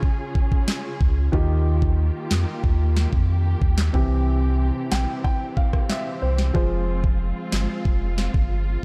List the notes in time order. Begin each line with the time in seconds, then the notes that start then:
Already playing: C#3 C#4 F4 G#4
0.03 kick
0.35 kick
0.52 kick
0.68 snare, clap
1.01 C#2, kick
1.32 D#2 D#3 A#3 D#4 F4 G4, kick
1.82 kick
2.31 F2, snare, clap
2.64 D#2, kick
2.97 snare
3.13 F2, kick
3.62 D#2, kick
3.78 snare, clap
3.93 C2 C3 E3 C4 G4, kick
4.92 A#1 G5, snare, clap
5.24 G5, kick
5.57 F5, kick
5.73 kick, cross-stick
5.90 E5, snare, clap
6.22 C2 C5
6.38 snare
6.54 F1 F3 G#3 F4 G#4 C5, kick
7.04 kick
7.52 G1, snare, clap
7.85 F1, kick
8.18 snare
8.34 G1, kick